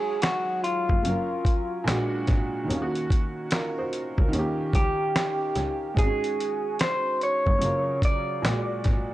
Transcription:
Already playing: F#3 G#3 D#4 G#4 C#5
0.22 F#4, snare, closed hi-hat
0.64 F4, closed hi-hat
0.89 F#1, kick
1.03 F#1 F#3 C#4 F4, closed hi-hat
1.08 A#4
1.45 kick, closed hi-hat
1.84 A#1 A#2 G#3 D4, snare
1.89 F#4, closed hi-hat
2.27 G#1, kick, snare, closed hi-hat
2.64 D#3 A#3
2.69 D#2 C#4, closed hi-hat
2.75 F4
2.82 F#4
2.95 closed hi-hat
3.10 kick, closed hi-hat
3.51 F4 A#4, snare, closed hi-hat
3.78 F#4 C5
3.93 closed hi-hat
4.18 C#2 F4 A#4, kick
4.28 D#3 C#4
4.33 D#2 F4, closed hi-hat
4.39 G4
4.73 C#2 G4, kick, closed hi-hat
5.16 snare, closed hi-hat
5.55 C#2, snare, closed hi-hat
5.94 G#1 G#3 D#4, kick
5.98 F#4 G#4, closed hi-hat
6.05 C#4
6.24 closed hi-hat
6.40 closed hi-hat
6.79 C5, snare, closed hi-hat
7.21 C#5, closed hi-hat
7.47 F#1, kick
7.59 F#1 C#3 F#3 F4, closed hi-hat
7.64 A#4
8.02 D5, kick, closed hi-hat
8.42 A#1 A#2 G#3 F#4, snare, closed hi-hat
8.48 D5
8.84 G#1, kick, snare, closed hi-hat

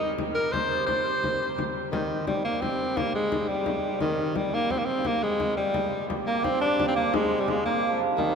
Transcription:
Already playing: C3 G3 D#4 G4 A#4 C5
0.02 frame drum
0.18 frame drum
0.35 A#4, frame drum
0.52 C5, frame drum
0.71 D5, frame drum
0.87 C5, frame drum
1.24 frame drum
1.41 frame drum
1.58 frame drum
1.91 C3 D#3 G3, frame drum
2.11 frame drum
2.27 G3, frame drum
2.44 A#3, frame drum
2.61 C4, frame drum
2.80 frame drum
2.97 A#3, frame drum
3.15 G#3, frame drum
3.32 frame drum
3.49 G3, frame drum
3.66 frame drum
3.84 frame drum
4.00 D#3, frame drum
4.19 frame drum
4.35 G3, frame drum
4.54 A#3, frame drum
4.70 C4, frame drum
4.78 A#3
4.85 C4, frame drum
5.05 A#3, frame drum
5.23 G#3
5.40 frame drum
5.57 G3, frame drum
5.74 frame drum
5.93 frame drum
6.09 C3 G3, frame drum
6.27 A#3, frame drum
6.44 C4, frame drum
6.60 D4, frame drum
6.79 frame drum
6.88 C4
6.95 A#3, frame drum
7.14 G#3, frame drum
7.31 frame drum
7.38 G3
7.48 G#3, frame drum
7.66 A#3, frame drum
7.87 F3
8.01 frame drum
8.17 D#3, frame drum

